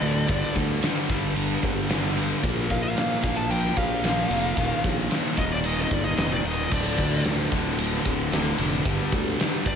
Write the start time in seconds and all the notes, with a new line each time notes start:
Already playing: D5
0.02 D2 A2 D3, ride
0.28 G1 G2 D3 G3, kick, ride
0.55 D2, kick, ride
0.83 G2 D3 G3, snare, ride
1.09 G1 G2 D3 G3, kick, ride
1.35 G2 D3 G3, ride
1.62 G1, kick, ride
1.89 G2 D3 G3, snare, ride
2.05 snare
2.15 G2 D3 G3, ride
2.42 A#1 A#2 F3 A#3, kick, ride
2.70 A#2 F5, kick, ride
2.83 F5
2.95 A#2 F3 A#3, snare, ride
2.99 F5
3.23 A#1 A#2 F3 A#3 F5, kick, ride
3.36 A5
3.50 A#2 F3 A#3 G5, ride
3.65 snare
3.76 A#1 F5, kick, ride
4.03 A#2 F3 A#3, snare, ride
4.30 F1 A#2 F3 A#3, ride
4.56 D#1 D#2 A#2 D#3, kick, ride
4.84 A#1, kick, ride
5.10 D#2 A#2 D#3, snare, ride
5.37 D#1 D#2 A#2 D#3 D#5, kick, ride
5.53 D5
5.64 D#2 A#2 D#3 D#5, ride
5.79 D#5, snare
5.91 G1 D5, kick, ride
6.04 D#5
6.17 F1 D#2 A#2 D#3 D#5, snare, ride
6.33 D5, snare
6.44 D#1 D#2 A#2 D#3 D#5, ride
6.68 D1 D2 D3 A3 F4, kick, crash
6.72 A2 D3 D5
6.98 D2, kick, ride
7.24 D2 A2 D3, snare, ride
7.52 D1 D2 A2 D3, kick, ride
7.78 D2 A2 D3, ride
7.93 snare
8.05 D1, kick, ride
8.32 D2 A2 D3, snare, ride
8.58 F1 D2 A2 D3, ride
8.85 G1 G2 D3 G3 B3 G4, kick, ride
9.12 D2, kick, ride
9.40 G2 D3 G3, snare, ride
9.65 G1 G2 D3 G3 D5, kick, ride